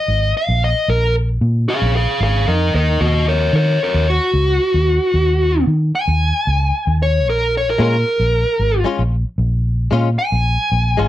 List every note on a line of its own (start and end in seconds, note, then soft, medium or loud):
0.00 0.34 D#5 medium
0.08 0.32 G#1 medium
0.37 0.62 F5 loud
0.48 0.73 A#1 medium
0.64 0.89 D#5 medium
0.88 1.37 A#1 loud
0.88 1.14 A#4 medium
1.41 1.65 A#2 loud
1.69 1.94 G#4 medium
1.69 1.94 F5 medium
1.82 2.06 A#1 medium
1.96 2.20 G#4 medium
1.96 2.21 F5 medium
2.20 2.45 G#1 medium
2.20 2.47 G#4 medium
2.20 2.48 F5 medium
2.48 2.71 F2 medium
2.48 2.72 A#4 medium
2.48 2.74 D#5 medium
2.74 3.00 D#2 medium
2.74 2.99 A#4 medium
2.74 3.00 D#5 medium
3.01 3.50 D#2 medium
3.01 3.25 F#4 medium
3.01 3.27 D#5 medium
3.28 3.52 A#4 medium
3.28 3.54 C#5 medium
3.53 3.77 D#3 medium
3.53 3.79 A#4 medium
3.53 3.81 C#5 medium
3.83 4.07 A#4 medium
3.83 4.08 C#5 medium
3.94 4.18 D#2 medium
4.10 5.64 F#4 medium
4.34 4.58 C#2 medium
4.74 4.98 D#2 medium
5.14 5.63 D#2 medium
5.67 5.91 D#3 loud
5.95 6.97 G#5 loud
6.08 6.31 D#2 medium
6.47 6.71 C#2 medium
6.87 7.26 D#2 loud
7.03 7.27 C#5 medium
7.26 7.75 A#1 loud
7.26 7.54 A#4 medium
7.57 7.68 C#5 medium
7.70 7.81 A#4 medium
7.78 8.03 A#2 loud
7.78 7.95 G#3 medium
7.78 7.96 C#4 medium
7.78 7.96 F4 medium
7.83 8.84 A#4 medium
8.20 8.44 A#1 medium
8.59 8.83 G#1 medium
8.84 9.01 G#3 medium
8.84 9.02 C#4 medium
8.84 9.02 F4 medium
8.99 9.23 A#1 loud
9.38 9.87 A#1 medium
9.91 10.16 A#2 loud
9.91 10.08 G#3 medium
9.91 10.08 C#4 medium
9.91 10.08 F4 loud
10.19 11.08 G#5 loud
10.32 10.56 A#1 medium
10.72 10.96 A#1 medium
10.97 11.08 G#1 medium
10.97 11.08 G#3 medium
10.97 11.08 C#4 medium
10.97 11.08 F4 medium